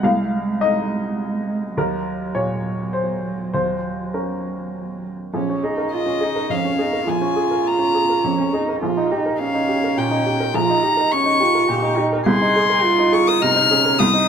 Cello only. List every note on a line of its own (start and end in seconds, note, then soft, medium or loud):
0.00 1.73 G#3 soft
1.77 5.10 F#3 soft
5.34 5.65 C#4 soft
5.63 5.94 D#4 soft
5.93 6.24 F4 soft
6.23 6.53 D#4 soft
6.52 6.82 C#4 soft
6.80 7.07 D#4 soft
7.08 8.25 F4 medium
8.24 8.55 C#4 soft
8.53 8.82 D#4 soft
8.82 9.13 F4 medium
9.12 9.40 D#4 soft
9.39 10.53 C#4 medium
10.54 10.85 F4 medium
10.84 11.14 D#4 medium
11.12 11.43 C#4 medium
11.41 11.71 F4 medium
11.69 11.99 G4 medium
11.98 12.26 D#4 medium
12.27 12.85 G#4 medium
12.84 13.43 F4 medium
13.41 13.71 D#4 medium
13.70 14.00 C#4 medium
13.99 14.28 C4 medium